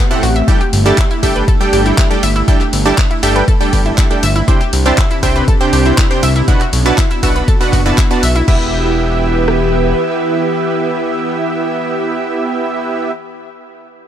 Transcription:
Already playing: analog synth pad A3 C4 G4
0.11 supersaw synth A2 C4 G4 A4 F#5, synth arpeggio sound E4 E5, closed hi-hat
0.23 analog synth bass A1, synth arpeggio sound F#4 F#5, open hi-hat
0.36 synth arpeggio sound E5 E6, closed hi-hat
0.48 supersaw synth G3 D4 G4 A4 G5, analog synth pad D4 G4, synth arpeggio sound E4 E5, kick, closed hi-hat
0.61 synth arpeggio sound G4 G5, closed hi-hat
0.73 analog synth bass G1, open hi-hat, ride
0.86 supersaw synth G3 D4 G4 A4 A5, synth arpeggio sound E4 E5, closed hi-hat
0.98 synth arpeggio sound E4 E5, kick, clap, closed hi-hat
1.11 synth arpeggio sound E4 E5, closed hi-hat
1.23 analog synth bass G1, supersaw synth G3 D4 G4 A4 G5, synth arpeggio sound E5 E6, kick, open hi-hat, ride
1.36 synth arpeggio sound B4 B5, closed hi-hat
1.48 synth arpeggio sound A4 A5, kick, closed hi-hat
1.61 supersaw synth G3 D4 G4 A4 G5, closed hi-hat
1.73 analog synth bass G1, synth arpeggio sound G4 G5, open hi-hat, ride
1.86 synth arpeggio sound E4 E5, closed hi-hat
1.98 synth arpeggio sound E4 E5, kick, clap, closed hi-hat
2.11 supersaw synth G3 D4 G4 A4 G5, closed hi-hat
2.23 analog synth bass G1, synth arpeggio sound E5 E6, open hi-hat, ride
2.36 synth arpeggio sound E4 E5, closed hi-hat
2.48 supersaw synth G3 D4 G4 A4 G5, synth arpeggio sound E4 E5, kick, closed hi-hat
2.61 synth arpeggio sound G4 G5, clap, closed hi-hat
2.73 analog synth bass G1, open hi-hat, ride
2.86 supersaw synth G3 D4 G4 A4 A5, synth arpeggio sound E4 E5, closed hi-hat
2.98 synth arpeggio sound E4 E5, kick, clap, closed hi-hat
3.11 synth arpeggio sound E4 E5, closed hi-hat
3.23 analog synth bass G1, supersaw synth G3 D4 G4 A4 G5, synth arpeggio sound E5 E6, open hi-hat, ride
3.36 synth arpeggio sound B4 B5, closed hi-hat
3.48 synth arpeggio sound A4 A5, kick, closed hi-hat
3.61 supersaw synth G3 D4 G4 A4 G5, open hi-hat
3.73 analog synth bass G1, synth arpeggio sound G4 G5, kick, open hi-hat, ride
3.86 synth arpeggio sound E4 E5, closed hi-hat
3.98 synth arpeggio sound E4 E5, kick, clap, closed hi-hat
4.11 supersaw synth G3 D4 G4 A4 G5, closed hi-hat
4.23 analog synth bass G1, synth arpeggio sound E5 E6, open hi-hat, ride
4.36 synth arpeggio sound E4 E5, closed hi-hat
4.48 supersaw synth C3 D4 G4 C5 G5, analog synth pad C3 C4 D4 G4, synth arpeggio sound E4 E5, kick, closed hi-hat
4.61 synth arpeggio sound G4 G5, closed hi-hat
4.73 analog synth bass C2, open hi-hat, ride
4.86 supersaw synth C3 D4 G4 C5 A5, synth arpeggio sound E4 E5, closed hi-hat
4.98 synth arpeggio sound E4 E5, kick, clap, closed hi-hat
5.11 synth arpeggio sound E4 E5, closed hi-hat
5.23 analog synth bass C2, supersaw synth C3 D4 G4 C5 G5, synth arpeggio sound E5 E6, kick, open hi-hat, ride
5.36 synth arpeggio sound B4 B5, closed hi-hat
5.48 synth arpeggio sound A4 A5, kick, closed hi-hat
5.61 supersaw synth C3 D4 G4 C5 G5, closed hi-hat
5.73 analog synth bass C2, synth arpeggio sound G4 G5, open hi-hat, ride
5.86 synth arpeggio sound E4 E5, closed hi-hat
5.98 synth arpeggio sound E4 E5, kick, clap, closed hi-hat
6.11 supersaw synth C3 D4 G4 C5 G5, closed hi-hat
6.23 analog synth bass C2, synth arpeggio sound E5 E6, open hi-hat, ride
6.36 synth arpeggio sound E4 E5, closed hi-hat
6.48 supersaw synth B2 D4 F#4 B4 F#5, analog synth pad B3 D4 F#4, synth arpeggio sound E4 E5, kick, closed hi-hat
6.61 synth arpeggio sound F#4 F#5, clap, closed hi-hat
6.73 analog synth bass B1, open hi-hat, ride
6.86 supersaw synth B2 D4 F#4 B4 A5, synth arpeggio sound E4 E5, closed hi-hat
6.98 synth arpeggio sound E4 E5, kick, clap, closed hi-hat
7.11 synth arpeggio sound E4 E5, closed hi-hat
7.23 analog synth bass B1, supersaw synth B2 D4 F#4 B4 F#5, synth arpeggio sound E5 E6, kick, open hi-hat, ride
7.36 synth arpeggio sound B4 B5, closed hi-hat
7.48 synth arpeggio sound A4 A5, kick, closed hi-hat
7.61 supersaw synth B2 D4 F#4 B4 F#5, open hi-hat
7.73 analog synth bass F#1, synth arpeggio sound F#4 F#5, kick, clap, open hi-hat, ride
7.86 supersaw synth B2 D4 F#4 B4 A5, synth arpeggio sound E4 E5, closed hi-hat
7.98 synth arpeggio sound E4 E5, kick, clap, closed hi-hat
8.11 supersaw synth B2 D4 F#4 B4 A5, closed hi-hat
8.23 analog synth bass B1, synth arpeggio sound E5 E6, open hi-hat, ride
8.36 synth arpeggio sound E4 E5, closed hi-hat
8.48 analog synth bass E1, analog synth pad E3 E4 G4 B4, supersaw synth B3 E4 G4 E5, synth arpeggio sound E4, kick, crash
9.48 cross-stick

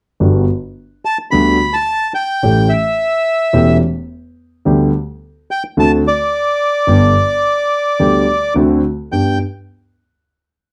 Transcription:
0.20 grand piano G1 G2 D3 G3 B3 F#4
1.05 bandoneon A5
1.31 grand piano D2 D3 G3 B3 F#4, bandoneon B5
1.73 bandoneon A5
2.15 bandoneon G5
2.43 grand piano A1 A2 E3 A3 C#4 G4
2.69 bandoneon E5
3.53 grand piano E1 E2 E3 A3 C#4 G4
4.65 grand piano D2 D3 G3 B3 G4
5.51 bandoneon G5
5.77 grand piano D2 D3 A3 C4 F#4, bandoneon A5
6.07 bandoneon D5
6.87 grand piano G1 G2 D3 G3 B3 G4
7.99 grand piano D2 D3 G3 B3 G4
8.55 grand piano D2 D3 A3 C4 F#4
9.12 grand piano G2 B3 D4 G4, bandoneon G5

